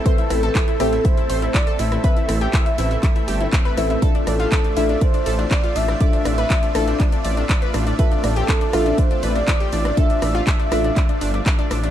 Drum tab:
HH |xxoxxxoxxxoxxxox|xxoxxxoxxxoxxxox|xxoxxxoxxxoxxxox|xxoxxxoxxxoxxxox|
CP |----x-------x---|----x---x---x---|----x-------x---|----x---x---x---|
SD |--r---r--------r|--r-----------r-|--r------------r|--r---r-------r-|
BD |o---o---o---o---|o---o---o---o---|o---o---o---o---|o---o---o---o---|

HH |xxoxxxoxxxoxxxox|xxoxxxoxxxoxxxox|
CP |----x-------x---|----x---x---x---|
SD |--r---r--------r|--r---r-------r-|
BD |o---o---o---o---|o---o---o---o---|